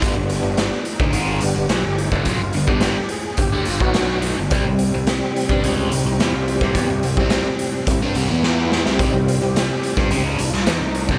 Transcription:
<<
  \new Staff \with { instrumentName = "Tonewheel organ" } { \time 4/4 \tempo 4 = 107 r8 d'4 ees'8 f'8 g'4 ees'8 | f'8. g'8. aes'8 g'8 f'16 ees'16 d'8 ees'16 d'16 | c'4 r4 d'8 ees'8 \tuplet 3/2 { f'4 g'8~ } | g'8. r2 r16 f'8 g'8 |
\tuplet 3/2 { ees'8 f'8 g'8 f'8 g'8 f'8 ees'8 d'8 f'8 ees'4 d'8 } | }
  \new Staff \with { instrumentName = "Tonewheel organ" } { \clef bass \time 4/4 <g b d'>4. r4 <g b d'>8 r4 | r8 <g b d'>8. r4. <fis b fis'>8. r8 | <c g>1 | <c g c'>2~ <c g c'>8. <e b e'>4 <c g c'>16~ |
<c g c'>4.~ <c g c'>16 <c g c'>8 r4. <c g c'>16 | }
  \new Staff \with { instrumentName = "Overdriven electric guitar" } { \clef bass \time 4/4 <g, d>16 <g, d>8 <g, d>8 r8 <d a>16 <aes, ees aes>8 <g, d>16 <g, d>16 <b, fis>16 <g, d>8 <g, d>16 | <b, fis>16 <g, d>16 <g, d>16 <g, d g>8 r8. <g, d>16 <d a>16 <g, d>16 <b, fis b>4 <g, d>16 | <c g>16 <c g>8 <c g>8 r8 <g d'>16 <cis aes cis'>8 <c g>16 <c g>16 <e b>16 <c g>8 <c g>16 | <e b>16 <c g>16 <c g>16 <c g c'>8 r8. <c g>16 <g d'>16 <c g>16 <e b e'>4 <c g>16 |
<c g>16 <c g>8 <c g>8 r8 <g d'>16 <cis aes cis'>8 <c g>16 <c g>16 <e b>16 <c g>8 <c g>16 | }
  \new Staff \with { instrumentName = "Picked electric bass" } { \clef bass \time 4/4 g,,16 g,,8 g,,8 r8 d,16 aes,,8 g,,16 g,,16 b,,16 g,,8 g,,16 | b,,16 g,,16 g,,16 g,,8 r8. g,,16 d,16 g,,16 b,,4 g,,16 | c,16 c,8 c,8 r8 g,16 cis,8 c,16 c,16 e,16 c,8 c,16 | e,16 c,16 c,16 c,8 r8. c,16 g,16 c,16 e,4 c,16 |
c,16 c,8 c,8 r8 g,16 cis,8 c,16 c,16 e,16 c,8 c,16 | }
  \new DrumStaff \with { instrumentName = "Drums" } \drummode { \time 4/4 <hh bd>8 hh8 <hh sn>8 hh16 bd16 hh8 hh8 <hh sn>8 hh16 bd16 | <hh bd>8 hh16 bd16 <hh sn>8 hh8 <hh bd>8 hh16 bd16 <hh sn>8 hh8 | <hh bd>8 hh8 <hh sn>8 hh16 bd16 hh8 hh8 <hh sn>8 hh16 bd16 | <hh bd>8 hh16 bd16 <hh sn>8 hh8 <hh bd>8 hh8 sn8 sn16 sn16 |
<hh bd>8 hh8 <hh sn>8 hh16 <bd sn>16 hh8 hh16 sn16 <hh sn>8 hh16 bd16 | }
>>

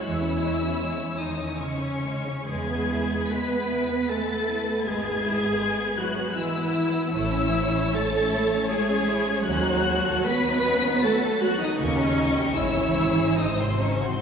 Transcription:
<<
  \new Staff \with { instrumentName = "Violin section" } { \time 3/4 \key e \major \tempo 4 = 77 e'''4. dis'''8 cis'''4 | gis'''4 b'''4 a'''4 | gis'''4. fis'''8 e'''4 | e'''4 a'''4 gis'''4 |
fis'''4 b'''4 a'''8 fis'''16 dis'''16 | cis'''4 e'''4 dis'''16 bis''16 cis'''16 bis''16 | }
  \new Staff \with { instrumentName = "Viola section" } { \time 3/4 \key e \major e'4. dis'8 cis'4 | gis'4 b'4 a'4 | gis'4. fis'8 e'4 | e'4 a'4 gis'4 |
fis'4 b'4 a'8 fis'16 dis'16 | cis'4 e'4 dis'16 bis16 cis'16 bis16 | }
  \new Staff \with { instrumentName = "Violin section" } { \time 3/4 \key e \major << { cis''2. | b'2.~ | b'2. | cis''2.~ |
cis''2. | dis''4 cis''4 bis'4 | } \\ { gis16 cis'16 gis16 cis'16 gis16 cis'16 gis16 cis'16 gis16 cis'16 gis16 cis'16 | gis16 b16 e'16 b16 gis16 b16 e'16 b16 gis16 b16 e'16 b16 | gis16 b16 e'16 b16 gis16 b16 e'16 b16 gis16 b16 e'16 b16 | a16 cis'16 e'16 cis'16 a16 cis'16 e'16 cis'16 a16 cis'16 e'16 cis'16 |
cis'16 dis'16 fis'16 a'16 fis'16 dis'16 cis'16 dis'16 fis'16 a'16 fis'16 dis'16 | ais16 cis'16 dis'16 g'16 gis16 cis'16 e'16 gis'16 gis16 bis16 dis'16 fis'16 | } >> }
  \new Staff \with { instrumentName = "Cello section" } { \clef bass \time 3/4 \key e \major e4. dis8 cis4 | gis4 b4 a4 | gis4. fis8 e4 | e4 a4 gis4 |
fis4 b4 a8 fis16 dis16 | cis4 e4 dis16 bis,16 cis16 bis,16 | }
  \new Staff \with { instrumentName = "Double bass section" } { \clef bass \time 3/4 \key e \major e,4 r2 | e,4 r2 | gis,,4 r2 | a,,4 r2 |
dis,4 r2 | dis,4 gis,,4 gis,,4 | }
>>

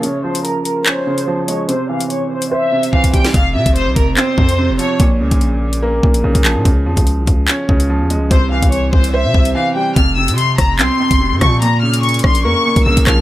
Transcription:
<<
  \new Staff \with { instrumentName = "Violin section" } { \time 4/4 \key des \lydian \tempo 4 = 145 des''8 c''8 bes'8 bes'8 c''4. des''8 | c''8 f''8 des''8 c''8 e''4 f''8 g''8 | f''8 e''8 c''8 bes'8 c''4. des''8 | r1 |
r1 | c''8 f''8 des''8 c''8 e''4 f''8 g''8 | f'''8 e'''8 c'''8 bes''8 c'''4. des'''8 | bes''8 f'''8 des'''8 c'''8 des'''4 e'''8 f'''8 | }
  \new Staff \with { instrumentName = "Felt piano" } { \clef bass \time 4/4 \key des \lydian des8 f4. des'8 des8 f8 aes8 | c8 e4. c''8 c8 e8 g8 | f,8 c4. c'8 f,8 c8 f8 | bes,8 des4. bes8 bes,8 des8 f8 |
des8 f4. des'8 des8 f8 aes8 | c8 e4. c''8 c8 e8 g8 | f,8 c4. c'8 f,8 c8 f8 | bes,8 des4. bes8 bes,8 des8 f8 | }
  \new Staff \with { instrumentName = "808-style bass" } { \clef bass \time 4/4 \key des \lydian r1 | r1 | f,,8 c16 f,,8 c,16 f,,8 r8 f,8. e,,16 r8 | bes,,8 des,16 bes,,4.~ bes,,16 bes,,8 bes,,16 bes,,8 bes,16 |
des,8 f,16 des,8 c,16 des,8 r8 des,8. e,16. des,16. | c,8. c,8. c,8. c16 c,8 r4 | f,,8. c8. f,,8 c,16 r8 f,,8 aes,16 bes,8~ | bes,4. bes,,8 f,16 r8 bes,,16 bes,,16 bes,,16 bes,,8 | }
  \new DrumStaff \with { instrumentName = "Drums" } \drummode { \time 4/4 hh8. hh16 hh8 hh8 <hc hh>8. hh16 r8 hh8 | hh8. hh16 hh8. hh16 r8. hh16 bd16 <hh bd>16 <hh bd>16 sn16 | <hh bd>8. <hh bd>16 hh8 <hh bd>8 <hc hh>8 bd16 hh16 r8 hh8 | <hh bd>8. <hh bd>16 hh8. hh16 r8 bd16 hh16 r16 <hh bd>16 <hc hh>8 |
<hh bd>8. <hh bd>16 hh8 <hh bd>8 <hc hh>8 bd16 hh16 r8 hh8 | <hh bd>8. <hh bd>16 hh8 bd16 hh16 r8 bd16 hh16 r4 | <hh bd>8. hh16 hh8 <hh bd ss>8 <hc hh>8. <hh bd>16 r8 <hh bd ss>8 | hh8. hh16 hh32 hh32 hh32 hh32 <bd ss>16 hh16 r8. <hh bd>16 r16 <hh bd>16 <hc hh bd ss>8 | }
>>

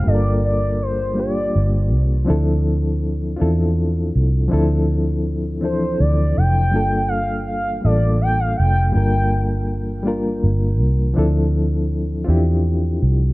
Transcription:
<<
  \new Staff \with { instrumentName = "Soft synth lead" } { \time 6/8 \key g \minor \tempo 4. = 54 d''8 d''8 c''8 d''4 r8 | r2. | r4. c''8 d''8 g''8~ | g''8 f''8 f''8 d''8 g''16 f''16 g''8 |
g''4 r2 | r2. | }
  \new Staff \with { instrumentName = "Reed electric piano" } { \time 6/8 \key g \minor <g bes d' f' a' bes'>4 r8 <g bes d' f' g'>4 r8 | <f c' d' e' a'>4 r8 <c' d' e' f' a'>4 r8 | <f c' d' e' a'>4 r8 <e f c' d' e' a'>4 r8 | <g bes d' f' a'>4 r8 <g bes d' f' a'>4 r8 |
<g bes d' f' bes'>4 r8 <g bes d' f' bes'>4 r8 | <f c' d' e' a'>4 r8 <c' d' e' f' g'>4 r8 | }
  \new Staff \with { instrumentName = "Fingered electric bass" } { \clef bass \time 6/8 \key g \minor g,,2 g,,8 c,8 | d,4. e,4 c,8 | d,2 d,8 f,,8 | g,,4. a,,4 f,,8 |
g,,2 g,,8 c,8 | d,4. e,4 c,8 | }
>>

